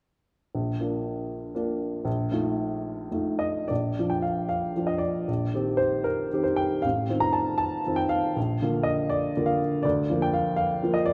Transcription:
0.55 0.80 A#1 soft
0.80 1.51 A#3 soft
0.80 1.52 D4 soft
0.80 1.52 F4 soft
1.55 2.02 A#3 soft
1.55 2.02 D4 soft
1.55 2.02 F4 soft
2.05 2.31 A#1 medium
2.32 3.08 A3 soft
2.32 3.08 D#4 soft
2.32 3.09 F4 soft
3.11 3.65 A3 soft
3.11 3.65 D#4 soft
3.11 3.66 F4 soft
3.39 3.69 D#5 medium
3.68 3.96 A#1 soft
3.68 4.10 D5 medium
3.99 4.73 F3 soft
3.99 4.73 D4 soft
3.99 4.73 F4 soft
4.10 4.23 G5 medium
4.22 4.47 F5 medium
4.49 4.88 F5 medium
4.76 5.24 F3 soft
4.76 5.24 D4 soft
4.76 5.25 F4 soft
4.87 5.01 D#5 medium
4.98 5.78 D5 medium
5.28 5.53 A#1 soft
5.54 6.28 D#3 soft
5.54 6.28 C4 soft
5.54 6.29 G4 soft
5.77 6.05 C5 medium
6.04 6.44 A#4 medium
6.33 6.80 D#3 soft
6.33 6.80 C4 soft
6.33 6.80 G4 soft
6.44 6.57 C5 medium
6.56 6.83 G5 medium
6.82 7.09 A1 soft
6.82 7.21 F5 medium
7.09 7.82 D#3 soft
7.09 7.81 C4 soft
7.09 7.82 F4 soft
7.20 7.34 A#5 medium
7.33 7.56 A5 medium
7.58 7.97 A5 medium
7.86 8.33 D#3 soft
7.86 8.33 C4 soft
7.86 8.33 F4 soft
7.96 8.10 G5 medium
8.09 8.86 F5 medium
8.36 8.61 A#1 soft
8.62 9.32 D3 soft
8.62 9.32 A#3 soft
8.62 9.32 F4 soft
8.83 9.10 D#5 medium
9.10 9.47 D5 medium
9.37 9.81 D3 soft
9.37 9.81 A#3 soft
9.37 9.81 F4 soft
9.46 9.59 F5 medium
9.83 10.09 D2 medium
9.83 10.21 D5 medium
10.10 10.80 F3 soft
10.10 10.80 A#3 soft
10.10 10.80 F4 soft
10.22 10.34 G5 medium
10.34 10.55 F5 medium
10.56 10.94 F5 medium
10.83 11.13 F3 soft
10.83 11.13 A#3 soft
10.83 11.13 F4 soft
10.94 11.07 D#5 medium
11.06 11.13 D5 medium

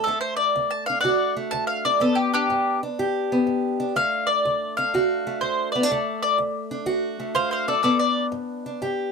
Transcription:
0.04 0.52 D2 medium
0.04 0.20 A4 medium
0.08 1.35 A3 medium
0.21 0.36 C5 medium
0.36 0.69 D5 medium
0.56 1.00 D2 medium
0.71 0.86 A5 medium
0.86 1.85 D4 medium
0.86 1.00 F5 medium
1.01 1.49 D2 medium
1.01 1.32 D5 medium
1.01 1.33 F#5 medium
1.05 1.99 F#4 medium
1.37 1.99 A3 medium
1.51 1.98 D2 medium
1.51 1.67 A5 loud
1.67 1.83 F5 medium
1.85 2.83 D4 medium
1.85 2.00 D5 medium
2.00 2.46 G2 medium
2.00 3.31 B3 medium
2.00 2.17 A4 medium
2.15 2.32 G4 medium
2.34 2.78 D4 medium
2.34 2.81 G4 loud
2.50 2.95 G2 medium
2.83 3.79 D4 medium
2.99 3.44 G2 medium
2.99 3.93 G4 medium
3.32 3.94 B3 medium
3.47 3.92 G2 medium
3.80 4.78 D4 medium
3.96 4.41 D2 medium
3.96 5.25 A3 medium
3.96 4.27 F5 loud
4.27 4.74 D5 medium
4.45 4.90 D2 medium
4.77 5.75 D4 medium
4.77 5.39 F5 medium
4.94 5.38 D2 medium
4.94 5.88 F#4 medium
5.27 5.88 A3 medium
5.41 5.86 D2 medium
5.41 5.71 C5 medium
5.72 5.83 B3 medium
5.72 6.19 D5 medium
5.83 5.90 D4 medium
5.91 6.35 D2 medium
5.91 7.18 A3 medium
6.23 6.37 D5 medium
6.38 6.83 D2 medium
6.71 7.68 D4 medium
6.86 7.31 D2 medium
6.86 7.81 F#4 medium
7.20 7.81 A3 medium
7.34 7.80 D2 medium
7.34 7.50 C5 medium
7.34 7.51 F5 medium
7.51 7.66 C5 medium
7.51 7.67 F5 medium
7.68 8.66 D4 medium
7.68 7.82 A4 medium
7.68 7.83 D5 medium
7.83 8.28 G2 medium
7.83 9.12 B3 medium
7.83 7.98 A4 medium
7.83 7.98 D5 medium
7.99 8.25 D5 loud
8.32 8.77 G2 medium
8.66 9.12 D4 medium
8.82 9.12 G2 medium
8.82 9.12 G4 medium

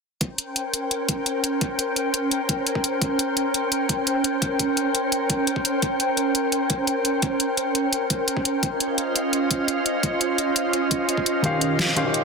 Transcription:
0.21 8.59 C#4 medium
0.21 8.59 A#4 medium
0.21 8.59 C5 medium
0.21 8.59 G5 medium
0.21 kick loud
0.21 closed hi-hat medium
0.38 closed hi-hat medium
0.56 closed hi-hat medium
0.74 closed hi-hat medium
0.91 closed hi-hat medium
1.09 kick loud
1.09 closed hi-hat medium
1.26 closed hi-hat medium
1.44 closed hi-hat medium
1.61 kick loud
1.61 closed hi-hat medium
1.79 closed hi-hat medium
1.96 closed hi-hat medium
2.14 closed hi-hat medium
2.31 closed hi-hat medium
2.49 kick loud
2.49 closed hi-hat medium
2.67 closed hi-hat medium
2.75 kick medium
2.84 closed hi-hat medium
3.02 kick loud
3.02 closed hi-hat medium
3.19 closed hi-hat medium
3.37 closed hi-hat medium
3.54 closed hi-hat medium
3.72 closed hi-hat medium
3.89 kick loud
3.89 closed hi-hat medium
4.07 closed hi-hat medium
4.24 closed hi-hat medium
4.42 kick loud
4.42 closed hi-hat medium
4.59 kick medium
4.59 closed hi-hat medium
4.77 closed hi-hat medium
4.95 closed hi-hat medium
5.12 closed hi-hat medium
5.30 kick loud
5.30 closed hi-hat medium
5.47 closed hi-hat medium
5.56 kick medium
5.65 closed hi-hat medium
5.82 kick loud
5.82 closed hi-hat medium
6.00 closed hi-hat medium
6.17 closed hi-hat medium
6.35 closed hi-hat medium
6.52 closed hi-hat medium
6.70 kick loud
6.70 closed hi-hat medium
6.87 closed hi-hat medium
7.05 closed hi-hat medium
7.22 kick loud
7.22 closed hi-hat medium
7.40 closed hi-hat medium
7.57 closed hi-hat medium
7.75 closed hi-hat medium
7.93 closed hi-hat medium
8.10 kick medium
8.10 closed hi-hat medium
8.28 closed hi-hat medium
8.37 kick medium
8.45 closed hi-hat medium
8.63 12.24 C#4 medium
8.63 12.24 F4 medium
8.63 12.24 C5 medium
8.63 12.24 D#5 medium
8.63 12.24 F5 medium
8.63 kick loud
8.63 closed hi-hat medium
8.80 closed hi-hat medium
8.98 closed hi-hat medium
9.16 closed hi-hat medium
9.33 closed hi-hat medium
9.51 kick medium
9.51 closed hi-hat medium
9.68 closed hi-hat medium
9.86 closed hi-hat medium
10.03 kick loud
10.03 closed hi-hat medium
10.21 closed hi-hat medium
10.38 closed hi-hat medium
10.56 closed hi-hat medium
10.73 closed hi-hat medium
10.91 kick medium
10.91 closed hi-hat medium
11.09 closed hi-hat medium
11.17 kick medium
11.26 closed hi-hat medium
11.42 11.94 D#3 medium
11.42 11.94 C#4 medium
11.42 11.94 G4 medium
11.42 11.95 C5 medium
11.42 11.95 F5 medium
11.42 kick loud
11.42 closed hi-hat medium
11.61 closed hi-hat medium
11.79 snare loud
11.79 closed hi-hat medium
11.96 12.02 D#3 medium
11.96 12.03 C#4 medium
11.96 12.03 G4 medium
11.96 12.03 C5 medium
11.96 12.04 F5 medium
11.96 closed hi-hat medium
12.04 12.24 D#3 medium
12.04 12.24 C#4 medium
12.04 12.24 G4 medium
12.04 12.24 C5 medium
12.04 12.24 F5 medium
12.14 closed hi-hat medium

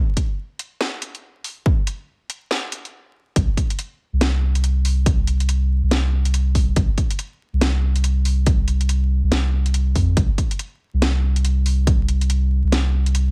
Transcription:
0.17 kick medium
0.17 closed hi-hat medium
0.59 closed hi-hat medium
0.81 snare loud
1.02 closed hi-hat medium
1.15 closed hi-hat soft
1.44 open hi-hat medium
1.66 kick loud
1.87 closed hi-hat medium
2.30 closed hi-hat medium
2.51 snare loud
2.72 closed hi-hat medium
2.85 closed hi-hat soft
3.36 3.48 C2 loud
3.36 kick loud
3.36 closed hi-hat medium
3.57 kick medium
3.57 closed hi-hat medium
3.70 closed hi-hat medium
3.79 closed hi-hat medium
4.13 5.81 C2 medium
4.21 snare loud
4.21 closed hi-hat medium
4.55 closed hi-hat medium
4.64 closed hi-hat medium
4.85 open hi-hat loud
5.06 kick loud
5.06 closed hi-hat medium
5.27 closed hi-hat medium
5.40 closed hi-hat medium
5.49 closed hi-hat medium
5.83 6.75 C2 medium
5.91 snare loud
5.91 closed hi-hat medium
6.25 closed hi-hat medium
6.34 closed hi-hat medium
6.55 kick medium
6.55 open hi-hat medium
6.76 6.88 C2 loud
6.76 kick loud
6.76 closed hi-hat medium
6.98 kick medium
6.98 closed hi-hat medium
7.11 closed hi-hat medium
7.19 closed hi-hat medium
7.53 9.22 C2 loud
7.61 snare loud
7.61 closed hi-hat medium
7.96 closed hi-hat medium
8.04 closed hi-hat medium
8.25 open hi-hat medium
8.46 kick loud
8.46 closed hi-hat medium
8.68 closed hi-hat medium
8.81 closed hi-hat medium
8.89 closed hi-hat medium
9.23 9.31 C2 loud
9.32 9.95 C2 medium
9.32 snare loud
9.32 closed hi-hat medium
9.66 closed hi-hat medium
9.74 closed hi-hat medium
9.96 10.16 F2 loud
9.96 kick medium
9.96 open hi-hat medium
10.17 10.29 C2 loud
10.17 kick loud
10.17 closed hi-hat medium
10.38 kick medium
10.38 closed hi-hat medium
10.51 closed hi-hat soft
10.59 closed hi-hat medium
10.94 12.62 C2 loud
11.02 snare loud
11.02 closed hi-hat medium
11.36 closed hi-hat medium
11.45 closed hi-hat medium
11.66 open hi-hat medium
11.87 kick loud
11.87 closed hi-hat medium
12.09 closed hi-hat medium
12.21 closed hi-hat soft
12.30 closed hi-hat medium
12.64 13.31 C2 loud
12.72 snare loud
12.72 closed hi-hat medium
13.06 closed hi-hat medium
13.15 closed hi-hat medium

